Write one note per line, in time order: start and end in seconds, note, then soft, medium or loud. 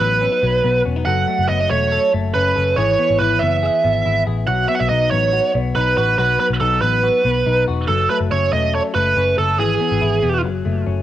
0.00 0.26 A1 loud
0.00 0.42 F#3 medium
0.00 0.63 B3 medium
0.00 0.21 D#4 medium
0.00 0.81 B4 loud
0.21 0.32 C#4 medium
0.32 0.85 D#4 medium
0.43 0.60 B1 loud
0.43 1.05 F#3 medium
0.64 0.82 B1 loud
0.64 1.11 B3 medium
0.85 1.03 E1 medium
0.85 0.96 C#4 medium
0.96 1.11 D#4 medium
1.05 1.24 F#1 loud
1.05 2.77 F#3 medium
1.05 1.91 A4 medium
1.05 1.50 F#5 loud
1.28 1.70 A3 medium
1.39 1.48 F#1 medium
1.48 1.67 F#1 loud
1.48 1.60 B3 medium
1.48 1.70 D#5 loud
1.60 2.33 C#4 medium
1.71 1.97 E1 medium
1.71 2.12 A3 medium
1.71 2.10 C#5 loud
1.92 2.55 A4 medium
2.13 2.31 F#1 loud
2.13 2.82 A3 medium
2.34 2.53 F#1 loud
2.34 2.82 C#4 medium
2.34 2.78 B4 medium
2.56 2.74 F#1 medium
2.56 2.77 A4 medium
2.76 2.95 G#1 loud
2.76 4.47 E3 medium
2.76 3.62 G#4 medium
2.76 3.21 C#5 loud
2.99 3.42 B3 medium
3.10 3.19 G#1 medium
3.19 3.38 G#1 loud
3.19 4.04 E4 medium
3.19 3.41 B4 medium
3.39 3.68 F#1 loud
3.39 3.84 B3 medium
3.39 4.22 E5 loud
3.63 4.26 G#4 medium
3.84 4.02 G#1 medium
3.84 4.69 B3 medium
4.06 4.23 G#1 medium
4.06 4.53 E4 medium
4.27 4.45 A1 medium
4.27 4.48 G#4 medium
4.47 4.66 B1 loud
4.47 6.18 F#3 medium
4.47 5.33 F#4 medium
4.47 4.68 F#5 loud
4.68 5.10 B3 medium
4.68 4.75 E5 medium
4.75 4.80 F#5 medium
4.79 4.89 B1 medium
4.79 4.89 E5 loud
4.89 5.09 B1 loud
4.89 5.75 D#4 medium
4.89 5.10 D#5 medium
5.11 5.39 A1 medium
5.11 5.53 B3 medium
5.11 5.51 C#5 medium
5.33 5.97 F#4 medium
5.55 5.72 B1 loud
5.55 6.39 B3 medium
5.75 5.94 B1 loud
5.75 6.60 D#4 medium
5.75 5.96 B4 medium
5.97 6.15 A1 medium
5.97 6.19 F#4 medium
5.97 6.17 B4 medium
6.18 6.36 B1 medium
6.18 7.88 F#3 medium
6.18 7.03 F#4 medium
6.18 6.39 B4 medium
6.40 6.81 B3 medium
6.40 6.46 B4 medium
6.50 6.59 B1 medium
6.60 6.79 B1 loud
6.60 7.45 D#4 medium
6.60 6.81 A4 medium
6.82 7.09 A1 loud
6.82 7.24 B3 medium
6.82 7.63 B4 medium
7.04 7.67 F#4 medium
7.25 7.43 B1 loud
7.25 7.93 B3 medium
7.46 7.64 B1 loud
7.46 7.93 D#4 medium
7.68 7.86 E1 medium
7.68 7.89 F#4 medium
7.88 8.06 F#1 loud
7.88 9.59 F#3 medium
7.88 8.10 A4 medium
7.88 8.73 A4 medium
8.10 8.51 A3 medium
8.10 8.16 B4 medium
8.21 8.30 F#1 medium
8.31 8.49 F#1 loud
8.31 9.15 C#4 medium
8.31 8.51 C#5 medium
8.53 8.79 E1 medium
8.53 8.94 A3 medium
8.53 8.74 D#5 medium
8.74 9.37 A4 medium
8.74 8.80 C#5 medium
8.95 9.13 F#1 loud
8.95 9.63 A3 medium
8.95 9.35 B4 medium
9.17 9.34 F#1 loud
9.17 9.63 C#4 medium
9.38 9.59 F#1 medium
9.38 9.59 A4 medium
9.59 9.77 G#1 loud
9.59 10.43 E3 medium
9.59 10.49 G#4 medium
9.59 10.40 G#4 medium
9.80 10.21 B3 medium
9.92 10.00 G#1 medium
10.01 10.20 G#1 loud
10.01 10.48 E4 medium
10.23 10.44 E1 medium
10.23 10.48 B3 medium
10.43 10.62 F#1 loud
10.43 11.02 F#3 medium
10.65 10.83 F#1 medium
10.65 11.02 A3 medium
10.87 11.02 F#1 loud
10.87 11.02 C#4 medium